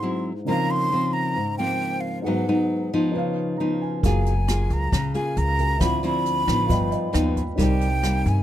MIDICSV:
0, 0, Header, 1, 6, 480
1, 0, Start_track
1, 0, Tempo, 444444
1, 512, Time_signature, 4, 2, 24, 8
1, 9103, End_track
2, 0, Start_track
2, 0, Title_t, "Flute"
2, 0, Program_c, 0, 73
2, 0, Note_on_c, 0, 84, 101
2, 280, Note_off_c, 0, 84, 0
2, 520, Note_on_c, 0, 82, 105
2, 764, Note_on_c, 0, 84, 109
2, 780, Note_off_c, 0, 82, 0
2, 1223, Note_on_c, 0, 82, 99
2, 1239, Note_off_c, 0, 84, 0
2, 1699, Note_off_c, 0, 82, 0
2, 1705, Note_on_c, 0, 79, 106
2, 2167, Note_on_c, 0, 77, 89
2, 2183, Note_off_c, 0, 79, 0
2, 2401, Note_off_c, 0, 77, 0
2, 2407, Note_on_c, 0, 78, 85
2, 3336, Note_off_c, 0, 78, 0
2, 4398, Note_on_c, 0, 80, 88
2, 5109, Note_on_c, 0, 82, 94
2, 5125, Note_off_c, 0, 80, 0
2, 5566, Note_off_c, 0, 82, 0
2, 5572, Note_on_c, 0, 80, 90
2, 5807, Note_on_c, 0, 82, 99
2, 5824, Note_off_c, 0, 80, 0
2, 6271, Note_on_c, 0, 83, 105
2, 6287, Note_off_c, 0, 82, 0
2, 6512, Note_off_c, 0, 83, 0
2, 6538, Note_on_c, 0, 83, 105
2, 7923, Note_off_c, 0, 83, 0
2, 8221, Note_on_c, 0, 79, 92
2, 8947, Note_on_c, 0, 80, 86
2, 8963, Note_off_c, 0, 79, 0
2, 9103, Note_off_c, 0, 80, 0
2, 9103, End_track
3, 0, Start_track
3, 0, Title_t, "Grand piano"
3, 0, Program_c, 1, 0
3, 0, Control_c, 1, 64, 127
3, 0, Note_on_c, 1, 64, 37
3, 0, Note_on_c, 1, 68, 33
3, 0, Note_on_c, 1, 72, 34
3, 0, Note_on_c, 1, 78, 41
3, 484, Note_on_c, 1, 49, 50
3, 502, Note_on_c, 1, 63, 48
3, 507, Note_off_c, 1, 64, 0
3, 512, Note_on_c, 1, 70, 44
3, 515, Note_off_c, 1, 68, 0
3, 519, Note_off_c, 1, 72, 0
3, 524, Note_off_c, 1, 78, 0
3, 528, Control_c, 1, 64, 0
3, 535, Note_on_c, 1, 72, 49
3, 552, Note_on_c, 1, 77, 55
3, 722, Control_c, 1, 64, 127
3, 2379, Note_off_c, 1, 49, 0
3, 2382, Note_off_c, 1, 63, 0
3, 2393, Note_off_c, 1, 70, 0
3, 2398, Note_on_c, 1, 63, 47
3, 2405, Note_off_c, 1, 72, 0
3, 2413, Note_off_c, 1, 77, 0
3, 2419, Note_on_c, 1, 68, 47
3, 2444, Control_c, 1, 64, 0
3, 2444, Note_on_c, 1, 71, 45
3, 2468, Note_on_c, 1, 78, 57
3, 2633, Control_c, 1, 64, 127
3, 3351, Note_off_c, 1, 63, 0
3, 3366, Note_off_c, 1, 68, 0
3, 3367, Note_on_c, 1, 63, 60
3, 3378, Note_off_c, 1, 71, 0
3, 3391, Note_off_c, 1, 78, 0
3, 3394, Note_on_c, 1, 71, 54
3, 3404, Control_c, 1, 64, 0
3, 3411, Note_on_c, 1, 73, 58
3, 3434, Note_on_c, 1, 77, 67
3, 3574, Control_c, 1, 64, 127
3, 3863, Note_on_c, 1, 82, 51
3, 4090, Note_off_c, 1, 82, 0
3, 4122, Note_on_c, 1, 80, 54
3, 4320, Note_off_c, 1, 63, 0
3, 4334, Note_off_c, 1, 71, 0
3, 4340, Note_off_c, 1, 80, 0
3, 4342, Note_off_c, 1, 73, 0
3, 4349, Note_on_c, 1, 70, 45
3, 4354, Note_off_c, 1, 77, 0
3, 4366, Control_c, 1, 64, 0
3, 4370, Note_on_c, 1, 77, 44
3, 4386, Note_on_c, 1, 80, 57
3, 4582, Control_c, 1, 64, 127
3, 5997, Note_off_c, 1, 70, 0
3, 6008, Note_off_c, 1, 77, 0
3, 6016, Note_off_c, 1, 80, 0
3, 6026, Note_on_c, 1, 66, 40
3, 6035, Note_on_c, 1, 70, 38
3, 6047, Note_on_c, 1, 77, 35
3, 6057, Note_on_c, 1, 80, 46
3, 6238, Note_on_c, 1, 76, 50
3, 6257, Note_on_c, 1, 72, 46
3, 6269, Note_off_c, 1, 66, 0
3, 6274, Note_off_c, 1, 70, 0
3, 6280, Note_off_c, 1, 77, 0
3, 6282, Note_on_c, 1, 74, 49
3, 6284, Note_off_c, 1, 80, 0
3, 6284, Control_c, 1, 64, 0
3, 6307, Note_on_c, 1, 65, 56
3, 6505, Control_c, 1, 64, 127
3, 7183, Note_off_c, 1, 65, 0
3, 7196, Note_off_c, 1, 76, 0
3, 7200, Note_on_c, 1, 65, 61
3, 7206, Note_off_c, 1, 72, 0
3, 7218, Note_off_c, 1, 74, 0
3, 7225, Note_on_c, 1, 71, 57
3, 7245, Control_c, 1, 64, 0
3, 7250, Note_on_c, 1, 75, 55
3, 7268, Note_on_c, 1, 79, 69
3, 7435, Control_c, 1, 64, 127
3, 7459, Note_off_c, 1, 75, 0
3, 7475, Note_on_c, 1, 75, 58
3, 7697, Note_off_c, 1, 75, 0
3, 7707, Note_off_c, 1, 79, 0
3, 7723, Note_on_c, 1, 79, 54
3, 7942, Note_off_c, 1, 79, 0
3, 7956, Note_on_c, 1, 83, 54
3, 8157, Note_off_c, 1, 65, 0
3, 8163, Note_on_c, 1, 63, 52
3, 8170, Note_off_c, 1, 71, 0
3, 8178, Note_off_c, 1, 83, 0
3, 8185, Note_on_c, 1, 70, 48
3, 8205, Control_c, 1, 64, 0
3, 8211, Note_on_c, 1, 72, 47
3, 8226, Note_on_c, 1, 79, 56
3, 8378, Control_c, 1, 64, 127
3, 9103, Note_off_c, 1, 63, 0
3, 9103, Note_off_c, 1, 70, 0
3, 9103, Note_off_c, 1, 72, 0
3, 9103, Note_off_c, 1, 79, 0
3, 9103, End_track
4, 0, Start_track
4, 0, Title_t, "Nylon-string guitar"
4, 0, Program_c, 2, 24
4, 0, Note_on_c, 2, 44, 58
4, 27, Note_on_c, 2, 54, 54
4, 33, Note_on_c, 2, 60, 62
4, 37, Note_on_c, 2, 64, 68
4, 339, Note_off_c, 2, 54, 0
4, 341, Note_off_c, 2, 60, 0
4, 344, Note_off_c, 2, 64, 0
4, 490, Note_off_c, 2, 44, 0
4, 513, Note_on_c, 2, 49, 58
4, 521, Note_on_c, 2, 53, 59
4, 525, Note_on_c, 2, 58, 59
4, 525, Note_on_c, 2, 60, 58
4, 956, Note_off_c, 2, 58, 0
4, 957, Note_off_c, 2, 53, 0
4, 960, Note_off_c, 2, 60, 0
4, 998, Note_on_c, 2, 53, 54
4, 1004, Note_on_c, 2, 58, 53
4, 1012, Note_on_c, 2, 60, 64
4, 1450, Note_off_c, 2, 49, 0
4, 1471, Note_on_c, 2, 44, 57
4, 1473, Note_off_c, 2, 53, 0
4, 1473, Note_off_c, 2, 58, 0
4, 1479, Note_off_c, 2, 60, 0
4, 1719, Note_on_c, 2, 53, 62
4, 1721, Note_on_c, 2, 58, 60
4, 1723, Note_on_c, 2, 60, 67
4, 2407, Note_off_c, 2, 44, 0
4, 2416, Note_off_c, 2, 58, 0
4, 2416, Note_off_c, 2, 60, 0
4, 2417, Note_off_c, 2, 53, 0
4, 2443, Note_on_c, 2, 44, 58
4, 2444, Note_on_c, 2, 54, 61
4, 2449, Note_on_c, 2, 59, 63
4, 2459, Note_on_c, 2, 63, 61
4, 2639, Note_off_c, 2, 54, 0
4, 2640, Note_off_c, 2, 59, 0
4, 2647, Note_off_c, 2, 63, 0
4, 2686, Note_on_c, 2, 54, 64
4, 2687, Note_on_c, 2, 59, 56
4, 2688, Note_on_c, 2, 63, 62
4, 3120, Note_off_c, 2, 63, 0
4, 3121, Note_off_c, 2, 54, 0
4, 3121, Note_off_c, 2, 59, 0
4, 3169, Note_on_c, 2, 59, 64
4, 3171, Note_on_c, 2, 53, 68
4, 3172, Note_on_c, 2, 63, 74
4, 3374, Note_off_c, 2, 44, 0
4, 3408, Note_on_c, 2, 49, 60
4, 3841, Note_off_c, 2, 59, 0
4, 3843, Note_off_c, 2, 53, 0
4, 3843, Note_off_c, 2, 63, 0
4, 3890, Note_on_c, 2, 53, 61
4, 3896, Note_on_c, 2, 59, 52
4, 3897, Note_on_c, 2, 63, 63
4, 4322, Note_off_c, 2, 53, 0
4, 4325, Note_off_c, 2, 63, 0
4, 4326, Note_off_c, 2, 59, 0
4, 4336, Note_off_c, 2, 49, 0
4, 4373, Note_on_c, 2, 54, 54
4, 4376, Note_on_c, 2, 58, 52
4, 4379, Note_on_c, 2, 65, 62
4, 4383, Note_on_c, 2, 68, 68
4, 4673, Note_off_c, 2, 58, 0
4, 4675, Note_off_c, 2, 65, 0
4, 4676, Note_off_c, 2, 68, 0
4, 4855, Note_on_c, 2, 58, 52
4, 4861, Note_on_c, 2, 65, 53
4, 4865, Note_on_c, 2, 68, 57
4, 5299, Note_off_c, 2, 54, 0
4, 5321, Note_off_c, 2, 58, 0
4, 5324, Note_off_c, 2, 65, 0
4, 5324, Note_off_c, 2, 68, 0
4, 5340, Note_on_c, 2, 49, 60
4, 5554, Note_on_c, 2, 58, 57
4, 5558, Note_on_c, 2, 65, 62
4, 5564, Note_on_c, 2, 68, 66
4, 6255, Note_off_c, 2, 58, 0
4, 6255, Note_off_c, 2, 65, 0
4, 6257, Note_off_c, 2, 68, 0
4, 6262, Note_off_c, 2, 49, 0
4, 6271, Note_on_c, 2, 50, 58
4, 6273, Note_on_c, 2, 53, 58
4, 6276, Note_on_c, 2, 60, 62
4, 6282, Note_on_c, 2, 64, 66
4, 6474, Note_off_c, 2, 53, 0
4, 6476, Note_off_c, 2, 60, 0
4, 6477, Note_off_c, 2, 64, 0
4, 6512, Note_on_c, 2, 53, 66
4, 6520, Note_on_c, 2, 60, 60
4, 6527, Note_on_c, 2, 64, 68
4, 6956, Note_off_c, 2, 53, 0
4, 6957, Note_off_c, 2, 60, 0
4, 6957, Note_off_c, 2, 64, 0
4, 6991, Note_on_c, 2, 53, 63
4, 6996, Note_on_c, 2, 59, 67
4, 6998, Note_on_c, 2, 63, 66
4, 7208, Note_off_c, 2, 50, 0
4, 7226, Note_on_c, 2, 43, 58
4, 7674, Note_off_c, 2, 53, 0
4, 7675, Note_off_c, 2, 59, 0
4, 7677, Note_off_c, 2, 63, 0
4, 7697, Note_on_c, 2, 53, 58
4, 7702, Note_on_c, 2, 59, 61
4, 7705, Note_on_c, 2, 63, 69
4, 8015, Note_off_c, 2, 53, 0
4, 8016, Note_off_c, 2, 59, 0
4, 8017, Note_off_c, 2, 63, 0
4, 8166, Note_off_c, 2, 43, 0
4, 8182, Note_on_c, 2, 55, 60
4, 8189, Note_on_c, 2, 58, 59
4, 8193, Note_on_c, 2, 48, 58
4, 8196, Note_on_c, 2, 63, 60
4, 8497, Note_off_c, 2, 55, 0
4, 8500, Note_off_c, 2, 58, 0
4, 8503, Note_off_c, 2, 63, 0
4, 8673, Note_on_c, 2, 55, 51
4, 8674, Note_on_c, 2, 58, 59
4, 8677, Note_on_c, 2, 63, 60
4, 9103, Note_off_c, 2, 48, 0
4, 9103, Note_off_c, 2, 55, 0
4, 9103, Note_off_c, 2, 58, 0
4, 9103, Note_off_c, 2, 63, 0
4, 9103, End_track
5, 0, Start_track
5, 0, Title_t, "Upright bass"
5, 0, Program_c, 3, 32
5, 4358, Note_on_c, 3, 30, 89
5, 5032, Note_off_c, 3, 30, 0
5, 5078, Note_on_c, 3, 37, 87
5, 5298, Note_off_c, 3, 37, 0
5, 5320, Note_on_c, 3, 37, 85
5, 5539, Note_off_c, 3, 37, 0
5, 5797, Note_on_c, 3, 37, 93
5, 6241, Note_off_c, 3, 37, 0
5, 6273, Note_on_c, 3, 38, 91
5, 6950, Note_off_c, 3, 38, 0
5, 6992, Note_on_c, 3, 33, 81
5, 7216, Note_off_c, 3, 33, 0
5, 7234, Note_on_c, 3, 31, 89
5, 7457, Note_off_c, 3, 31, 0
5, 7716, Note_on_c, 3, 39, 94
5, 8161, Note_off_c, 3, 39, 0
5, 8197, Note_on_c, 3, 36, 86
5, 8872, Note_off_c, 3, 36, 0
5, 8917, Note_on_c, 3, 43, 90
5, 9103, Note_off_c, 3, 43, 0
5, 9103, End_track
6, 0, Start_track
6, 0, Title_t, "Drums"
6, 4356, Note_on_c, 9, 36, 62
6, 4358, Note_on_c, 9, 42, 46
6, 4464, Note_off_c, 9, 36, 0
6, 4466, Note_off_c, 9, 42, 0
6, 4601, Note_on_c, 9, 42, 27
6, 4709, Note_off_c, 9, 42, 0
6, 4841, Note_on_c, 9, 37, 60
6, 4841, Note_on_c, 9, 42, 44
6, 4949, Note_off_c, 9, 37, 0
6, 4949, Note_off_c, 9, 42, 0
6, 5078, Note_on_c, 9, 36, 23
6, 5081, Note_on_c, 9, 42, 25
6, 5186, Note_off_c, 9, 36, 0
6, 5189, Note_off_c, 9, 42, 0
6, 5318, Note_on_c, 9, 36, 61
6, 5322, Note_on_c, 9, 37, 59
6, 5322, Note_on_c, 9, 42, 39
6, 5426, Note_off_c, 9, 36, 0
6, 5430, Note_off_c, 9, 37, 0
6, 5430, Note_off_c, 9, 42, 0
6, 5560, Note_on_c, 9, 42, 27
6, 5668, Note_off_c, 9, 42, 0
6, 5796, Note_on_c, 9, 42, 40
6, 5904, Note_off_c, 9, 42, 0
6, 6032, Note_on_c, 9, 36, 25
6, 6033, Note_on_c, 9, 42, 27
6, 6140, Note_off_c, 9, 36, 0
6, 6141, Note_off_c, 9, 42, 0
6, 6272, Note_on_c, 9, 36, 67
6, 6273, Note_on_c, 9, 37, 63
6, 6273, Note_on_c, 9, 42, 46
6, 6380, Note_off_c, 9, 36, 0
6, 6381, Note_off_c, 9, 37, 0
6, 6381, Note_off_c, 9, 42, 0
6, 6516, Note_on_c, 9, 42, 26
6, 6624, Note_off_c, 9, 42, 0
6, 6757, Note_on_c, 9, 42, 41
6, 6865, Note_off_c, 9, 42, 0
6, 6993, Note_on_c, 9, 36, 22
6, 6997, Note_on_c, 9, 37, 55
6, 6997, Note_on_c, 9, 42, 26
6, 7101, Note_off_c, 9, 36, 0
6, 7105, Note_off_c, 9, 37, 0
6, 7105, Note_off_c, 9, 42, 0
6, 7231, Note_on_c, 9, 36, 59
6, 7235, Note_on_c, 9, 42, 43
6, 7339, Note_off_c, 9, 36, 0
6, 7343, Note_off_c, 9, 42, 0
6, 7472, Note_on_c, 9, 42, 27
6, 7580, Note_off_c, 9, 42, 0
6, 7712, Note_on_c, 9, 37, 55
6, 7712, Note_on_c, 9, 42, 44
6, 7820, Note_off_c, 9, 37, 0
6, 7820, Note_off_c, 9, 42, 0
6, 7953, Note_on_c, 9, 36, 24
6, 7957, Note_on_c, 9, 42, 30
6, 8061, Note_off_c, 9, 36, 0
6, 8065, Note_off_c, 9, 42, 0
6, 8194, Note_on_c, 9, 36, 64
6, 8196, Note_on_c, 9, 42, 49
6, 8302, Note_off_c, 9, 36, 0
6, 8304, Note_off_c, 9, 42, 0
6, 8437, Note_on_c, 9, 42, 29
6, 8545, Note_off_c, 9, 42, 0
6, 8677, Note_on_c, 9, 37, 57
6, 8677, Note_on_c, 9, 42, 45
6, 8785, Note_off_c, 9, 37, 0
6, 8785, Note_off_c, 9, 42, 0
6, 8915, Note_on_c, 9, 36, 24
6, 8921, Note_on_c, 9, 42, 26
6, 9023, Note_off_c, 9, 36, 0
6, 9029, Note_off_c, 9, 42, 0
6, 9103, End_track
0, 0, End_of_file